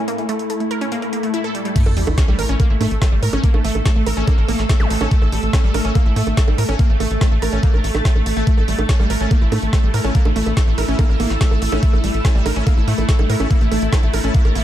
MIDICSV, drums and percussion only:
0, 0, Header, 1, 2, 480
1, 0, Start_track
1, 0, Tempo, 419580
1, 90, Time_signature, 4, 2, 24, 8
1, 16747, End_track
2, 0, Start_track
2, 0, Title_t, "Drums"
2, 90, Note_on_c, 9, 42, 81
2, 205, Note_off_c, 9, 42, 0
2, 210, Note_on_c, 9, 42, 38
2, 325, Note_off_c, 9, 42, 0
2, 330, Note_on_c, 9, 42, 79
2, 445, Note_off_c, 9, 42, 0
2, 450, Note_on_c, 9, 42, 54
2, 565, Note_off_c, 9, 42, 0
2, 570, Note_on_c, 9, 42, 80
2, 684, Note_off_c, 9, 42, 0
2, 690, Note_on_c, 9, 42, 38
2, 805, Note_off_c, 9, 42, 0
2, 810, Note_on_c, 9, 42, 81
2, 925, Note_off_c, 9, 42, 0
2, 930, Note_on_c, 9, 42, 52
2, 1045, Note_off_c, 9, 42, 0
2, 1050, Note_on_c, 9, 42, 85
2, 1164, Note_off_c, 9, 42, 0
2, 1170, Note_on_c, 9, 42, 37
2, 1285, Note_off_c, 9, 42, 0
2, 1290, Note_on_c, 9, 42, 82
2, 1405, Note_off_c, 9, 42, 0
2, 1410, Note_on_c, 9, 42, 51
2, 1525, Note_off_c, 9, 42, 0
2, 1530, Note_on_c, 9, 42, 82
2, 1645, Note_off_c, 9, 42, 0
2, 1651, Note_on_c, 9, 42, 37
2, 1765, Note_off_c, 9, 42, 0
2, 1771, Note_on_c, 9, 42, 81
2, 1885, Note_off_c, 9, 42, 0
2, 1891, Note_on_c, 9, 42, 55
2, 2005, Note_off_c, 9, 42, 0
2, 2011, Note_on_c, 9, 36, 121
2, 2011, Note_on_c, 9, 42, 78
2, 2011, Note_on_c, 9, 49, 103
2, 2125, Note_off_c, 9, 36, 0
2, 2125, Note_off_c, 9, 42, 0
2, 2125, Note_off_c, 9, 49, 0
2, 2131, Note_on_c, 9, 60, 41
2, 2245, Note_off_c, 9, 60, 0
2, 2251, Note_on_c, 9, 46, 102
2, 2365, Note_off_c, 9, 46, 0
2, 2371, Note_on_c, 9, 42, 55
2, 2371, Note_on_c, 9, 60, 82
2, 2485, Note_off_c, 9, 42, 0
2, 2485, Note_off_c, 9, 60, 0
2, 2490, Note_on_c, 9, 38, 124
2, 2490, Note_on_c, 9, 42, 84
2, 2491, Note_on_c, 9, 36, 125
2, 2605, Note_off_c, 9, 36, 0
2, 2605, Note_off_c, 9, 38, 0
2, 2605, Note_off_c, 9, 42, 0
2, 2611, Note_on_c, 9, 60, 42
2, 2725, Note_off_c, 9, 60, 0
2, 2731, Note_on_c, 9, 46, 111
2, 2845, Note_off_c, 9, 46, 0
2, 2851, Note_on_c, 9, 42, 56
2, 2965, Note_off_c, 9, 42, 0
2, 2971, Note_on_c, 9, 36, 120
2, 2971, Note_on_c, 9, 42, 85
2, 2971, Note_on_c, 9, 60, 41
2, 3085, Note_off_c, 9, 36, 0
2, 3085, Note_off_c, 9, 42, 0
2, 3085, Note_off_c, 9, 60, 0
2, 3211, Note_on_c, 9, 46, 106
2, 3211, Note_on_c, 9, 60, 78
2, 3325, Note_off_c, 9, 46, 0
2, 3325, Note_off_c, 9, 60, 0
2, 3331, Note_on_c, 9, 42, 57
2, 3445, Note_off_c, 9, 42, 0
2, 3451, Note_on_c, 9, 36, 119
2, 3451, Note_on_c, 9, 38, 126
2, 3451, Note_on_c, 9, 42, 84
2, 3451, Note_on_c, 9, 60, 41
2, 3565, Note_off_c, 9, 36, 0
2, 3565, Note_off_c, 9, 38, 0
2, 3565, Note_off_c, 9, 42, 0
2, 3565, Note_off_c, 9, 60, 0
2, 3690, Note_on_c, 9, 46, 108
2, 3805, Note_off_c, 9, 46, 0
2, 3811, Note_on_c, 9, 42, 58
2, 3811, Note_on_c, 9, 60, 41
2, 3925, Note_off_c, 9, 42, 0
2, 3925, Note_off_c, 9, 60, 0
2, 3931, Note_on_c, 9, 36, 127
2, 3931, Note_on_c, 9, 42, 79
2, 4045, Note_off_c, 9, 36, 0
2, 4045, Note_off_c, 9, 42, 0
2, 4050, Note_on_c, 9, 60, 79
2, 4165, Note_off_c, 9, 60, 0
2, 4170, Note_on_c, 9, 46, 110
2, 4285, Note_off_c, 9, 46, 0
2, 4291, Note_on_c, 9, 42, 52
2, 4291, Note_on_c, 9, 60, 38
2, 4405, Note_off_c, 9, 42, 0
2, 4405, Note_off_c, 9, 60, 0
2, 4410, Note_on_c, 9, 38, 125
2, 4410, Note_on_c, 9, 42, 83
2, 4411, Note_on_c, 9, 36, 125
2, 4525, Note_off_c, 9, 36, 0
2, 4525, Note_off_c, 9, 38, 0
2, 4525, Note_off_c, 9, 42, 0
2, 4651, Note_on_c, 9, 46, 113
2, 4651, Note_on_c, 9, 60, 38
2, 4765, Note_off_c, 9, 46, 0
2, 4765, Note_off_c, 9, 60, 0
2, 4771, Note_on_c, 9, 42, 55
2, 4885, Note_off_c, 9, 42, 0
2, 4891, Note_on_c, 9, 36, 127
2, 4891, Note_on_c, 9, 42, 83
2, 4891, Note_on_c, 9, 60, 80
2, 5005, Note_off_c, 9, 36, 0
2, 5005, Note_off_c, 9, 42, 0
2, 5005, Note_off_c, 9, 60, 0
2, 5131, Note_on_c, 9, 46, 108
2, 5131, Note_on_c, 9, 60, 38
2, 5245, Note_off_c, 9, 46, 0
2, 5245, Note_off_c, 9, 60, 0
2, 5251, Note_on_c, 9, 38, 39
2, 5251, Note_on_c, 9, 42, 52
2, 5365, Note_off_c, 9, 38, 0
2, 5365, Note_off_c, 9, 42, 0
2, 5371, Note_on_c, 9, 36, 125
2, 5371, Note_on_c, 9, 38, 125
2, 5371, Note_on_c, 9, 42, 78
2, 5485, Note_off_c, 9, 36, 0
2, 5485, Note_off_c, 9, 38, 0
2, 5485, Note_off_c, 9, 42, 0
2, 5491, Note_on_c, 9, 60, 39
2, 5605, Note_off_c, 9, 60, 0
2, 5611, Note_on_c, 9, 46, 114
2, 5725, Note_off_c, 9, 46, 0
2, 5731, Note_on_c, 9, 42, 54
2, 5731, Note_on_c, 9, 60, 78
2, 5845, Note_off_c, 9, 42, 0
2, 5845, Note_off_c, 9, 60, 0
2, 5851, Note_on_c, 9, 36, 127
2, 5851, Note_on_c, 9, 42, 74
2, 5965, Note_off_c, 9, 36, 0
2, 5965, Note_off_c, 9, 42, 0
2, 5971, Note_on_c, 9, 60, 38
2, 6085, Note_off_c, 9, 60, 0
2, 6091, Note_on_c, 9, 46, 108
2, 6205, Note_off_c, 9, 46, 0
2, 6211, Note_on_c, 9, 42, 51
2, 6325, Note_off_c, 9, 42, 0
2, 6331, Note_on_c, 9, 36, 126
2, 6331, Note_on_c, 9, 38, 126
2, 6331, Note_on_c, 9, 42, 78
2, 6331, Note_on_c, 9, 60, 38
2, 6445, Note_off_c, 9, 36, 0
2, 6445, Note_off_c, 9, 38, 0
2, 6445, Note_off_c, 9, 42, 0
2, 6445, Note_off_c, 9, 60, 0
2, 6571, Note_on_c, 9, 46, 112
2, 6571, Note_on_c, 9, 60, 75
2, 6685, Note_off_c, 9, 46, 0
2, 6685, Note_off_c, 9, 60, 0
2, 6691, Note_on_c, 9, 42, 52
2, 6805, Note_off_c, 9, 42, 0
2, 6811, Note_on_c, 9, 36, 127
2, 6811, Note_on_c, 9, 42, 78
2, 6811, Note_on_c, 9, 60, 39
2, 6925, Note_off_c, 9, 36, 0
2, 6925, Note_off_c, 9, 42, 0
2, 6925, Note_off_c, 9, 60, 0
2, 7051, Note_on_c, 9, 46, 110
2, 7165, Note_off_c, 9, 46, 0
2, 7171, Note_on_c, 9, 42, 50
2, 7171, Note_on_c, 9, 60, 36
2, 7285, Note_off_c, 9, 42, 0
2, 7285, Note_off_c, 9, 60, 0
2, 7291, Note_on_c, 9, 36, 124
2, 7291, Note_on_c, 9, 38, 125
2, 7291, Note_on_c, 9, 42, 79
2, 7405, Note_off_c, 9, 36, 0
2, 7405, Note_off_c, 9, 38, 0
2, 7405, Note_off_c, 9, 42, 0
2, 7411, Note_on_c, 9, 60, 77
2, 7525, Note_off_c, 9, 60, 0
2, 7531, Note_on_c, 9, 46, 116
2, 7645, Note_off_c, 9, 46, 0
2, 7651, Note_on_c, 9, 42, 52
2, 7651, Note_on_c, 9, 60, 37
2, 7765, Note_off_c, 9, 42, 0
2, 7765, Note_off_c, 9, 60, 0
2, 7771, Note_on_c, 9, 36, 127
2, 7771, Note_on_c, 9, 42, 75
2, 7885, Note_off_c, 9, 36, 0
2, 7885, Note_off_c, 9, 42, 0
2, 8011, Note_on_c, 9, 46, 110
2, 8011, Note_on_c, 9, 60, 38
2, 8125, Note_off_c, 9, 46, 0
2, 8125, Note_off_c, 9, 60, 0
2, 8131, Note_on_c, 9, 42, 51
2, 8245, Note_off_c, 9, 42, 0
2, 8251, Note_on_c, 9, 36, 127
2, 8251, Note_on_c, 9, 38, 117
2, 8251, Note_on_c, 9, 42, 75
2, 8251, Note_on_c, 9, 60, 75
2, 8365, Note_off_c, 9, 36, 0
2, 8365, Note_off_c, 9, 38, 0
2, 8365, Note_off_c, 9, 42, 0
2, 8365, Note_off_c, 9, 60, 0
2, 8491, Note_on_c, 9, 46, 112
2, 8491, Note_on_c, 9, 60, 39
2, 8605, Note_off_c, 9, 46, 0
2, 8605, Note_off_c, 9, 60, 0
2, 8611, Note_on_c, 9, 42, 51
2, 8725, Note_off_c, 9, 42, 0
2, 8731, Note_on_c, 9, 36, 126
2, 8731, Note_on_c, 9, 42, 75
2, 8845, Note_off_c, 9, 36, 0
2, 8845, Note_off_c, 9, 42, 0
2, 8851, Note_on_c, 9, 60, 40
2, 8965, Note_off_c, 9, 60, 0
2, 8971, Note_on_c, 9, 46, 109
2, 9085, Note_off_c, 9, 46, 0
2, 9091, Note_on_c, 9, 38, 35
2, 9091, Note_on_c, 9, 42, 50
2, 9091, Note_on_c, 9, 60, 75
2, 9205, Note_off_c, 9, 38, 0
2, 9205, Note_off_c, 9, 42, 0
2, 9205, Note_off_c, 9, 60, 0
2, 9211, Note_on_c, 9, 36, 124
2, 9211, Note_on_c, 9, 38, 117
2, 9211, Note_on_c, 9, 42, 75
2, 9325, Note_off_c, 9, 36, 0
2, 9325, Note_off_c, 9, 38, 0
2, 9325, Note_off_c, 9, 42, 0
2, 9331, Note_on_c, 9, 60, 39
2, 9445, Note_off_c, 9, 60, 0
2, 9451, Note_on_c, 9, 46, 110
2, 9565, Note_off_c, 9, 46, 0
2, 9571, Note_on_c, 9, 42, 50
2, 9685, Note_off_c, 9, 42, 0
2, 9691, Note_on_c, 9, 36, 124
2, 9691, Note_on_c, 9, 42, 76
2, 9805, Note_off_c, 9, 36, 0
2, 9805, Note_off_c, 9, 42, 0
2, 9811, Note_on_c, 9, 60, 41
2, 9925, Note_off_c, 9, 60, 0
2, 9931, Note_on_c, 9, 46, 110
2, 10045, Note_off_c, 9, 46, 0
2, 10051, Note_on_c, 9, 42, 53
2, 10051, Note_on_c, 9, 60, 80
2, 10165, Note_off_c, 9, 42, 0
2, 10165, Note_off_c, 9, 60, 0
2, 10171, Note_on_c, 9, 36, 121
2, 10171, Note_on_c, 9, 38, 119
2, 10171, Note_on_c, 9, 42, 77
2, 10285, Note_off_c, 9, 36, 0
2, 10285, Note_off_c, 9, 38, 0
2, 10285, Note_off_c, 9, 42, 0
2, 10291, Note_on_c, 9, 60, 40
2, 10405, Note_off_c, 9, 60, 0
2, 10411, Note_on_c, 9, 46, 112
2, 10525, Note_off_c, 9, 46, 0
2, 10531, Note_on_c, 9, 42, 51
2, 10645, Note_off_c, 9, 42, 0
2, 10651, Note_on_c, 9, 36, 123
2, 10651, Note_on_c, 9, 42, 76
2, 10651, Note_on_c, 9, 60, 41
2, 10765, Note_off_c, 9, 36, 0
2, 10765, Note_off_c, 9, 42, 0
2, 10765, Note_off_c, 9, 60, 0
2, 10891, Note_on_c, 9, 46, 105
2, 10891, Note_on_c, 9, 60, 80
2, 11005, Note_off_c, 9, 46, 0
2, 11005, Note_off_c, 9, 60, 0
2, 11011, Note_on_c, 9, 42, 49
2, 11125, Note_off_c, 9, 42, 0
2, 11131, Note_on_c, 9, 36, 120
2, 11131, Note_on_c, 9, 38, 110
2, 11131, Note_on_c, 9, 42, 78
2, 11131, Note_on_c, 9, 60, 40
2, 11245, Note_off_c, 9, 36, 0
2, 11245, Note_off_c, 9, 38, 0
2, 11245, Note_off_c, 9, 42, 0
2, 11245, Note_off_c, 9, 60, 0
2, 11371, Note_on_c, 9, 46, 109
2, 11485, Note_off_c, 9, 46, 0
2, 11491, Note_on_c, 9, 42, 53
2, 11491, Note_on_c, 9, 60, 40
2, 11605, Note_off_c, 9, 42, 0
2, 11605, Note_off_c, 9, 60, 0
2, 11611, Note_on_c, 9, 36, 121
2, 11611, Note_on_c, 9, 42, 77
2, 11725, Note_off_c, 9, 36, 0
2, 11725, Note_off_c, 9, 42, 0
2, 11730, Note_on_c, 9, 60, 85
2, 11845, Note_off_c, 9, 60, 0
2, 11851, Note_on_c, 9, 46, 102
2, 11965, Note_off_c, 9, 46, 0
2, 11971, Note_on_c, 9, 42, 55
2, 11971, Note_on_c, 9, 60, 42
2, 12085, Note_off_c, 9, 42, 0
2, 12085, Note_off_c, 9, 60, 0
2, 12091, Note_on_c, 9, 36, 118
2, 12091, Note_on_c, 9, 38, 116
2, 12091, Note_on_c, 9, 42, 80
2, 12205, Note_off_c, 9, 36, 0
2, 12205, Note_off_c, 9, 38, 0
2, 12205, Note_off_c, 9, 42, 0
2, 12331, Note_on_c, 9, 46, 104
2, 12331, Note_on_c, 9, 60, 44
2, 12445, Note_off_c, 9, 46, 0
2, 12445, Note_off_c, 9, 60, 0
2, 12451, Note_on_c, 9, 42, 52
2, 12565, Note_off_c, 9, 42, 0
2, 12571, Note_on_c, 9, 36, 118
2, 12571, Note_on_c, 9, 42, 79
2, 12571, Note_on_c, 9, 60, 84
2, 12685, Note_off_c, 9, 36, 0
2, 12685, Note_off_c, 9, 42, 0
2, 12685, Note_off_c, 9, 60, 0
2, 12811, Note_on_c, 9, 46, 100
2, 12811, Note_on_c, 9, 60, 41
2, 12925, Note_off_c, 9, 46, 0
2, 12925, Note_off_c, 9, 60, 0
2, 12931, Note_on_c, 9, 38, 36
2, 12931, Note_on_c, 9, 42, 53
2, 13045, Note_off_c, 9, 38, 0
2, 13045, Note_off_c, 9, 42, 0
2, 13051, Note_on_c, 9, 36, 112
2, 13051, Note_on_c, 9, 38, 117
2, 13051, Note_on_c, 9, 42, 78
2, 13165, Note_off_c, 9, 36, 0
2, 13165, Note_off_c, 9, 38, 0
2, 13165, Note_off_c, 9, 42, 0
2, 13171, Note_on_c, 9, 60, 43
2, 13285, Note_off_c, 9, 60, 0
2, 13291, Note_on_c, 9, 46, 107
2, 13405, Note_off_c, 9, 46, 0
2, 13411, Note_on_c, 9, 42, 54
2, 13411, Note_on_c, 9, 60, 84
2, 13526, Note_off_c, 9, 42, 0
2, 13526, Note_off_c, 9, 60, 0
2, 13531, Note_on_c, 9, 36, 119
2, 13531, Note_on_c, 9, 42, 78
2, 13645, Note_off_c, 9, 36, 0
2, 13646, Note_off_c, 9, 42, 0
2, 13651, Note_on_c, 9, 60, 42
2, 13765, Note_off_c, 9, 60, 0
2, 13771, Note_on_c, 9, 46, 103
2, 13886, Note_off_c, 9, 46, 0
2, 13891, Note_on_c, 9, 42, 55
2, 14006, Note_off_c, 9, 42, 0
2, 14011, Note_on_c, 9, 36, 117
2, 14011, Note_on_c, 9, 38, 117
2, 14011, Note_on_c, 9, 42, 83
2, 14011, Note_on_c, 9, 60, 41
2, 14125, Note_off_c, 9, 36, 0
2, 14125, Note_off_c, 9, 38, 0
2, 14125, Note_off_c, 9, 42, 0
2, 14125, Note_off_c, 9, 60, 0
2, 14251, Note_on_c, 9, 46, 102
2, 14251, Note_on_c, 9, 60, 88
2, 14365, Note_off_c, 9, 46, 0
2, 14365, Note_off_c, 9, 60, 0
2, 14371, Note_on_c, 9, 42, 55
2, 14485, Note_off_c, 9, 42, 0
2, 14491, Note_on_c, 9, 36, 116
2, 14491, Note_on_c, 9, 42, 83
2, 14491, Note_on_c, 9, 60, 43
2, 14605, Note_off_c, 9, 36, 0
2, 14605, Note_off_c, 9, 42, 0
2, 14605, Note_off_c, 9, 60, 0
2, 14731, Note_on_c, 9, 46, 100
2, 14845, Note_off_c, 9, 46, 0
2, 14851, Note_on_c, 9, 42, 55
2, 14851, Note_on_c, 9, 60, 40
2, 14965, Note_off_c, 9, 42, 0
2, 14965, Note_off_c, 9, 60, 0
2, 14971, Note_on_c, 9, 36, 114
2, 14971, Note_on_c, 9, 38, 115
2, 14971, Note_on_c, 9, 42, 84
2, 15085, Note_off_c, 9, 36, 0
2, 15085, Note_off_c, 9, 38, 0
2, 15085, Note_off_c, 9, 42, 0
2, 15091, Note_on_c, 9, 60, 84
2, 15205, Note_off_c, 9, 60, 0
2, 15211, Note_on_c, 9, 46, 103
2, 15325, Note_off_c, 9, 46, 0
2, 15331, Note_on_c, 9, 42, 56
2, 15331, Note_on_c, 9, 60, 43
2, 15445, Note_off_c, 9, 42, 0
2, 15445, Note_off_c, 9, 60, 0
2, 15451, Note_on_c, 9, 36, 119
2, 15451, Note_on_c, 9, 42, 85
2, 15565, Note_off_c, 9, 36, 0
2, 15565, Note_off_c, 9, 42, 0
2, 15571, Note_on_c, 9, 42, 39
2, 15685, Note_off_c, 9, 42, 0
2, 15691, Note_on_c, 9, 46, 105
2, 15691, Note_on_c, 9, 60, 41
2, 15805, Note_off_c, 9, 46, 0
2, 15805, Note_off_c, 9, 60, 0
2, 15811, Note_on_c, 9, 42, 57
2, 15925, Note_off_c, 9, 42, 0
2, 15931, Note_on_c, 9, 36, 116
2, 15931, Note_on_c, 9, 38, 123
2, 15931, Note_on_c, 9, 42, 86
2, 15931, Note_on_c, 9, 60, 84
2, 16045, Note_off_c, 9, 36, 0
2, 16045, Note_off_c, 9, 38, 0
2, 16045, Note_off_c, 9, 42, 0
2, 16045, Note_off_c, 9, 60, 0
2, 16051, Note_on_c, 9, 42, 40
2, 16165, Note_off_c, 9, 42, 0
2, 16171, Note_on_c, 9, 46, 108
2, 16171, Note_on_c, 9, 60, 43
2, 16285, Note_off_c, 9, 46, 0
2, 16285, Note_off_c, 9, 60, 0
2, 16291, Note_on_c, 9, 42, 56
2, 16405, Note_off_c, 9, 42, 0
2, 16411, Note_on_c, 9, 36, 123
2, 16411, Note_on_c, 9, 42, 86
2, 16525, Note_off_c, 9, 36, 0
2, 16525, Note_off_c, 9, 42, 0
2, 16531, Note_on_c, 9, 42, 40
2, 16531, Note_on_c, 9, 60, 42
2, 16645, Note_off_c, 9, 42, 0
2, 16645, Note_off_c, 9, 60, 0
2, 16651, Note_on_c, 9, 46, 103
2, 16747, Note_off_c, 9, 46, 0
2, 16747, End_track
0, 0, End_of_file